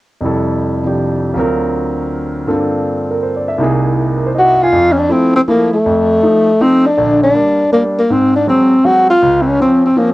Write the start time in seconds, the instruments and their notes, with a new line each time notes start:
0.21 grand piano F2 C3 G3 E4
0.26 grand piano A4
0.84 grand piano C3 F3 D4 G4
1.34 grand piano D2 D3 F#3 C4 F4
1.39 grand piano A#4
2.47 grand piano G2 D3 A#3 C4 F4 A4
3.11 grand piano A#4
3.23 grand piano C5
3.36 grand piano D5
3.48 grand piano E5
3.58 grand piano C2 C3 A#3 D#4 E4
3.63 grand piano G#4
4.17 grand piano A#4
4.26 grand piano C5
4.35 grand piano D#5
4.39 tenor saxophone F#4
4.45 grand piano E5
4.55 grand piano F#5
4.63 tenor saxophone F4, grand piano G#5
4.73 grand piano F2
4.92 tenor saxophone C#4
4.98 tenor saxophone D4
5.09 grand piano F3 A3 E4, tenor saxophone C4
5.36 tenor saxophone C4
5.48 grand piano F3 A3 E4, tenor saxophone A#3
5.73 tenor saxophone A3
5.86 grand piano F2
6.23 grand piano F3 A3 D#4
6.61 grand piano F3 A3 D#4, tenor saxophone C4
6.86 tenor saxophone D4
6.97 grand piano A#1 D3
7.24 tenor saxophone D4
7.34 grand piano G3 A#3 D4
7.72 grand piano G3 A#3 D4, tenor saxophone A#3
7.99 tenor saxophone A#3
8.10 grand piano G#2, tenor saxophone C4
8.36 tenor saxophone D4
8.47 grand piano F#3 G#3 C4, tenor saxophone C4
8.85 grand piano F#3 G#3 C4, tenor saxophone F#4
9.10 tenor saxophone F4
9.22 grand piano C#2
9.42 tenor saxophone C4
9.48 tenor saxophone C#4
9.60 grand piano F3 C4 C#4, tenor saxophone C4
9.85 tenor saxophone C4
9.96 grand piano F3 C4 C#4, tenor saxophone A#3